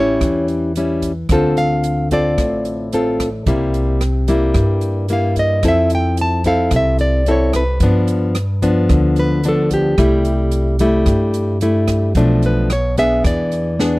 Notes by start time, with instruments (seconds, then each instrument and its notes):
Already playing: upright bass A1, nylon-string guitar A2 G3 C#4 E4 C#5
0.21 upright bass E2, nylon-string guitar E3, kick, cross-stick, closed hi-hat
0.48 closed hi-hat
0.76 nylon-string guitar G3 C#4 E4, closed hi-hat
1.02 kick, closed hi-hat
1.29 upright bass D2, nylon-string guitar D3 C4 F4 A4, kick, cross-stick, closed hi-hat
1.34 nylon-string guitar C5
1.57 nylon-string guitar F5, closed hi-hat
1.84 closed hi-hat
2.11 nylon-string guitar C4 F4 A4 D5, kick, closed hi-hat
2.38 upright bass A1, nylon-string guitar A2, kick, cross-stick, closed hi-hat
2.65 closed hi-hat
2.92 nylon-string guitar C4 F4 A4, closed hi-hat
3.19 kick, cross-stick, closed hi-hat
3.46 upright bass C2, nylon-string guitar C3 G3 A#3 E4, kick, closed hi-hat
3.74 closed hi-hat
4.01 cross-stick, closed hi-hat
4.28 nylon-string guitar G3 A#3 E4, kick, closed hi-hat
4.54 upright bass G2, nylon-string guitar G2, kick, cross-stick, closed hi-hat
4.81 closed hi-hat
5.08 nylon-string guitar G3 A#3 E4, closed hi-hat
5.13 nylon-string guitar F5
5.36 nylon-string guitar D#5, kick, closed hi-hat
5.63 upright bass F2, nylon-string guitar F3 C4 E4 A4, kick, cross-stick, closed hi-hat
5.68 nylon-string guitar E5
5.90 closed hi-hat
5.95 nylon-string guitar G5
6.17 closed hi-hat
6.21 nylon-string guitar A5
6.44 nylon-string guitar C4 E4 A4 F5, kick, closed hi-hat
6.71 upright bass C2, nylon-string guitar C3, kick, cross-stick, closed hi-hat
6.76 nylon-string guitar E5
6.99 nylon-string guitar D5, closed hi-hat
7.26 nylon-string guitar C4 E4 A4, closed hi-hat
7.31 nylon-string guitar C#5
7.53 nylon-string guitar B4, kick, cross-stick, closed hi-hat
7.80 upright bass G2, nylon-string guitar G2 F3 B3 D4, kick, closed hi-hat
8.08 closed hi-hat
8.35 cross-stick, closed hi-hat
8.62 nylon-string guitar F3 B3 D4, kick, closed hi-hat
8.89 upright bass D2, nylon-string guitar D3, kick, cross-stick, closed hi-hat
9.16 nylon-string guitar B4, closed hi-hat
9.44 nylon-string guitar F3 B3 D4, closed hi-hat
9.49 nylon-string guitar A4
9.71 nylon-string guitar G4, kick, closed hi-hat
9.98 upright bass C2, nylon-string guitar C3 G3 A3 E4, kick, cross-stick, closed hi-hat
10.25 closed hi-hat
10.51 closed hi-hat
10.79 nylon-string guitar G3 A3 E4, kick, closed hi-hat
11.06 upright bass G2, nylon-string guitar G2, kick, cross-stick, closed hi-hat
11.34 closed hi-hat
11.61 nylon-string guitar G3 A3 E4, closed hi-hat
11.88 kick, cross-stick, closed hi-hat
12.15 upright bass B1, nylon-string guitar B2 F3 A3 D4, kick, closed hi-hat
12.42 nylon-string guitar B4, closed hi-hat
12.70 nylon-string guitar C#5, cross-stick, closed hi-hat
12.97 nylon-string guitar B3 D4 G#4 E5, kick, closed hi-hat
13.24 upright bass E2, nylon-string guitar E3 D5, kick, cross-stick, closed hi-hat
13.52 closed hi-hat
13.79 nylon-string guitar B3 D4 G#4, snare